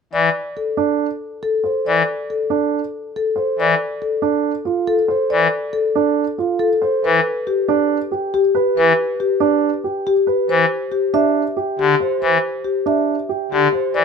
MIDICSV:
0, 0, Header, 1, 4, 480
1, 0, Start_track
1, 0, Tempo, 431655
1, 143, Time_signature, 4, 2, 24, 8
1, 15618, End_track
2, 0, Start_track
2, 0, Title_t, "Marimba"
2, 0, Program_c, 0, 12
2, 142, Note_on_c, 0, 74, 56
2, 455, Note_off_c, 0, 74, 0
2, 631, Note_on_c, 0, 69, 45
2, 938, Note_off_c, 0, 69, 0
2, 1587, Note_on_c, 0, 69, 58
2, 1897, Note_off_c, 0, 69, 0
2, 2072, Note_on_c, 0, 74, 55
2, 2379, Note_off_c, 0, 74, 0
2, 2560, Note_on_c, 0, 69, 45
2, 2862, Note_off_c, 0, 69, 0
2, 3517, Note_on_c, 0, 69, 57
2, 3820, Note_off_c, 0, 69, 0
2, 4000, Note_on_c, 0, 74, 57
2, 4302, Note_off_c, 0, 74, 0
2, 4467, Note_on_c, 0, 69, 47
2, 4777, Note_off_c, 0, 69, 0
2, 5420, Note_on_c, 0, 69, 60
2, 5734, Note_off_c, 0, 69, 0
2, 5896, Note_on_c, 0, 74, 60
2, 6213, Note_off_c, 0, 74, 0
2, 6373, Note_on_c, 0, 69, 53
2, 6692, Note_off_c, 0, 69, 0
2, 7333, Note_on_c, 0, 69, 62
2, 7652, Note_off_c, 0, 69, 0
2, 7830, Note_on_c, 0, 71, 65
2, 8138, Note_off_c, 0, 71, 0
2, 8307, Note_on_c, 0, 67, 54
2, 8617, Note_off_c, 0, 67, 0
2, 9272, Note_on_c, 0, 67, 69
2, 9579, Note_off_c, 0, 67, 0
2, 9755, Note_on_c, 0, 71, 68
2, 10060, Note_off_c, 0, 71, 0
2, 10232, Note_on_c, 0, 67, 56
2, 10539, Note_off_c, 0, 67, 0
2, 11195, Note_on_c, 0, 67, 68
2, 11500, Note_off_c, 0, 67, 0
2, 11668, Note_on_c, 0, 72, 64
2, 11977, Note_off_c, 0, 72, 0
2, 12138, Note_on_c, 0, 67, 54
2, 12386, Note_on_c, 0, 76, 62
2, 12454, Note_off_c, 0, 67, 0
2, 12697, Note_off_c, 0, 76, 0
2, 13110, Note_on_c, 0, 67, 59
2, 13418, Note_off_c, 0, 67, 0
2, 13588, Note_on_c, 0, 72, 59
2, 13897, Note_off_c, 0, 72, 0
2, 14059, Note_on_c, 0, 67, 47
2, 14309, Note_on_c, 0, 76, 55
2, 14374, Note_off_c, 0, 67, 0
2, 14618, Note_off_c, 0, 76, 0
2, 15038, Note_on_c, 0, 67, 59
2, 15341, Note_off_c, 0, 67, 0
2, 15505, Note_on_c, 0, 74, 63
2, 15618, Note_off_c, 0, 74, 0
2, 15618, End_track
3, 0, Start_track
3, 0, Title_t, "Grand piano"
3, 0, Program_c, 1, 0
3, 859, Note_on_c, 1, 62, 59
3, 1174, Note_off_c, 1, 62, 0
3, 1820, Note_on_c, 1, 72, 42
3, 2134, Note_off_c, 1, 72, 0
3, 2781, Note_on_c, 1, 62, 58
3, 3095, Note_off_c, 1, 62, 0
3, 3734, Note_on_c, 1, 72, 48
3, 4052, Note_off_c, 1, 72, 0
3, 4693, Note_on_c, 1, 62, 60
3, 5012, Note_off_c, 1, 62, 0
3, 5174, Note_on_c, 1, 65, 50
3, 5492, Note_off_c, 1, 65, 0
3, 5653, Note_on_c, 1, 72, 50
3, 5972, Note_off_c, 1, 72, 0
3, 6621, Note_on_c, 1, 62, 62
3, 6935, Note_off_c, 1, 62, 0
3, 7099, Note_on_c, 1, 65, 51
3, 7414, Note_off_c, 1, 65, 0
3, 7580, Note_on_c, 1, 72, 53
3, 7894, Note_off_c, 1, 72, 0
3, 8545, Note_on_c, 1, 62, 68
3, 8856, Note_off_c, 1, 62, 0
3, 9024, Note_on_c, 1, 67, 52
3, 9336, Note_off_c, 1, 67, 0
3, 9504, Note_on_c, 1, 71, 57
3, 9816, Note_off_c, 1, 71, 0
3, 10456, Note_on_c, 1, 62, 68
3, 10773, Note_off_c, 1, 62, 0
3, 10944, Note_on_c, 1, 67, 47
3, 11256, Note_off_c, 1, 67, 0
3, 11420, Note_on_c, 1, 71, 49
3, 11734, Note_off_c, 1, 71, 0
3, 12383, Note_on_c, 1, 62, 62
3, 12696, Note_off_c, 1, 62, 0
3, 12862, Note_on_c, 1, 67, 46
3, 13175, Note_off_c, 1, 67, 0
3, 13347, Note_on_c, 1, 72, 50
3, 13657, Note_off_c, 1, 72, 0
3, 14298, Note_on_c, 1, 62, 54
3, 14614, Note_off_c, 1, 62, 0
3, 14781, Note_on_c, 1, 67, 44
3, 15095, Note_off_c, 1, 67, 0
3, 15259, Note_on_c, 1, 72, 45
3, 15574, Note_off_c, 1, 72, 0
3, 15618, End_track
4, 0, Start_track
4, 0, Title_t, "Pipe organ"
4, 0, Program_c, 2, 19
4, 144, Note_on_c, 2, 52, 57
4, 324, Note_off_c, 2, 52, 0
4, 2078, Note_on_c, 2, 52, 57
4, 2252, Note_off_c, 2, 52, 0
4, 3985, Note_on_c, 2, 52, 62
4, 4165, Note_off_c, 2, 52, 0
4, 5910, Note_on_c, 2, 52, 60
4, 6088, Note_off_c, 2, 52, 0
4, 7832, Note_on_c, 2, 52, 69
4, 8009, Note_off_c, 2, 52, 0
4, 9751, Note_on_c, 2, 52, 66
4, 9928, Note_off_c, 2, 52, 0
4, 11669, Note_on_c, 2, 52, 64
4, 11847, Note_off_c, 2, 52, 0
4, 13106, Note_on_c, 2, 50, 59
4, 13285, Note_off_c, 2, 50, 0
4, 13584, Note_on_c, 2, 52, 57
4, 13764, Note_off_c, 2, 52, 0
4, 15026, Note_on_c, 2, 50, 58
4, 15205, Note_off_c, 2, 50, 0
4, 15505, Note_on_c, 2, 52, 57
4, 15618, Note_off_c, 2, 52, 0
4, 15618, End_track
0, 0, End_of_file